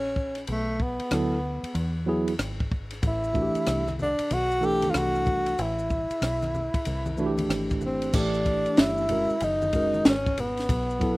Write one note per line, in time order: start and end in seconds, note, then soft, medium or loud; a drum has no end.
0.00 0.45 A#1 medium
0.00 0.45 C#4 medium
0.16 kick medium
0.35 cross-stick soft
0.35 ride soft
0.47 0.98 B1 medium
0.47 0.84 A3 medium
0.47 ride medium
0.80 2.09 B3 medium
0.80 kick medium
1.00 muted fingered electric bass stroke soft
1.00 ride soft
1.11 1.61 D2 medium
1.11 1.36 F#3 medium
1.11 1.37 B3 medium
1.11 1.37 E4 medium
1.11 1.38 A4 medium
1.11 cross-stick loud
1.11 hi-hat pedal soft
1.11 ride medium
1.63 muted fingered electric bass stroke soft
1.63 ride medium
1.75 2.36 E2 medium
1.75 ride medium
2.06 2.32 F#3 medium
2.06 2.32 B3 medium
2.06 2.33 E4 medium
2.06 2.33 G#4 medium
2.28 ride medium
2.39 3.00 G#1 medium
2.39 cross-stick loud
2.39 hi-hat pedal soft
2.39 ride medium
2.60 kick medium
2.72 kick medium
2.91 cross-stick soft
2.91 ride medium
3.03 3.53 A1 loud
3.03 kick loud
3.03 ride medium
3.03 maracas medium
3.07 3.97 E4 medium
3.24 maracas soft
3.33 3.82 E3 medium
3.33 3.83 A3 medium
3.33 3.83 D4 medium
3.33 3.44 F#4 medium
3.33 kick medium
3.33 low conga medium
3.33 maracas soft
3.42 3.87 G4 medium
3.55 muted fingered electric bass stroke soft
3.55 ride soft
3.55 maracas soft
3.66 4.17 C2 loud
3.66 cross-stick loud
3.66 hi-hat pedal soft
3.66 ride medium
3.66 maracas medium
3.87 cross-stick soft
3.87 high conga medium
3.87 maracas soft
3.99 4.35 D4 medium
3.99 high conga soft
3.99 low conga medium
3.99 maracas soft
4.19 muted fingered electric bass stroke soft
4.19 ride medium
4.19 maracas soft
4.31 4.91 B1 medium
4.31 4.67 F#4 medium
4.31 ride medium
4.31 high conga soft
4.31 maracas medium
4.51 maracas soft
4.61 5.53 E3 medium
4.61 5.53 A3 medium
4.61 5.54 D4 medium
4.61 5.54 A4 medium
4.61 maracas soft
4.65 4.92 G4 loud
4.82 ride medium
4.82 high conga medium
4.82 maracas soft
4.90 4.99 F4 medium
4.90 cross-stick loud
4.94 5.55 C2 medium
4.94 5.63 F#4 loud
4.94 hi-hat pedal soft
4.94 ride medium
4.94 maracas medium
5.15 maracas soft
5.26 kick medium
5.26 low conga medium
5.26 maracas soft
5.46 ride soft
5.46 maracas soft
5.58 6.08 A1 medium
5.58 7.51 E4 medium
5.58 ride medium
5.58 maracas medium
5.79 maracas soft
5.90 kick medium
5.90 low conga medium
5.90 maracas soft
6.10 muted fingered electric bass stroke soft
6.10 ride soft
6.10 maracas soft
6.21 6.71 B1 medium
6.21 cross-stick loud
6.21 hi-hat pedal soft
6.21 ride medium
6.21 maracas medium
6.42 cross-stick soft
6.42 high conga medium
6.42 maracas soft
6.54 high conga soft
6.54 low conga medium
6.54 maracas soft
6.74 muted fingered electric bass stroke soft
6.74 kick medium
6.74 ride medium
6.74 maracas soft
6.85 7.47 C2 medium
6.85 ride medium
6.85 high conga soft
6.85 maracas medium
7.06 high conga medium
7.06 maracas soft
7.17 8.09 E3 medium
7.17 8.09 A3 medium
7.17 8.10 D4 medium
7.17 7.27 F#4 medium
7.17 maracas soft
7.26 8.13 G4 medium
7.38 ride medium
7.38 high conga medium
7.38 maracas soft
7.49 8.10 G#1 medium
7.49 cross-stick loud
7.49 hi-hat pedal soft
7.49 ride medium
7.49 maracas medium
7.70 kick medium
7.70 maracas soft
7.81 low conga medium
7.81 maracas soft
7.86 8.18 C4 medium
8.02 ride medium
8.02 maracas soft
8.12 8.63 A1 medium
8.12 9.04 E3 medium
8.12 9.05 A3 medium
8.12 9.05 D4 medium
8.12 8.82 D4 loud
8.12 9.06 G4 medium
8.12 kick loud
8.12 crash medium
8.12 maracas medium
8.34 maracas soft
8.45 kick medium
8.45 ride soft
8.45 maracas soft
8.66 muted fingered electric bass stroke soft
8.66 ride soft
8.66 maracas soft
8.77 9.27 G1 medium
8.77 9.45 E4 loud
8.77 snare loud
8.77 hi-hat pedal soft
8.77 ride medium
8.77 maracas medium
8.98 maracas soft
9.09 9.34 G#3 medium
9.09 9.35 C#4 medium
9.09 9.35 F#4 medium
9.09 9.36 A#4 medium
9.09 ride medium
9.09 high conga soft
9.09 low conga medium
9.09 maracas soft
9.30 maracas soft
9.40 10.02 F#1 loud
9.40 10.09 D#4 loud
9.40 ride medium
9.40 high conga soft
9.40 maracas medium
9.62 high conga medium
9.62 maracas soft
9.73 10.13 G#3 medium
9.73 10.13 C#4 medium
9.73 10.14 F#4 medium
9.73 10.15 A#4 medium
9.73 kick medium
9.73 ride medium
9.73 maracas soft
9.94 high conga medium
9.94 maracas soft
10.05 10.66 G#1 medium
10.05 10.41 C#4 medium
10.05 snare loud
10.05 hi-hat pedal soft
10.05 ride medium
10.05 maracas medium
10.26 kick medium
10.26 maracas soft
10.38 11.17 B3 medium
10.38 ride medium
10.38 low conga medium
10.38 maracas soft
10.57 snare soft
10.57 ride soft
10.57 maracas soft
10.69 11.17 B1 loud
10.69 kick loud
10.69 ride medium
10.69 maracas medium
10.90 maracas soft
10.99 11.17 F#3 medium
10.99 11.17 B3 medium
10.99 11.17 E4 medium
10.99 11.17 A4 medium
10.99 kick medium
10.99 ride soft
10.99 maracas soft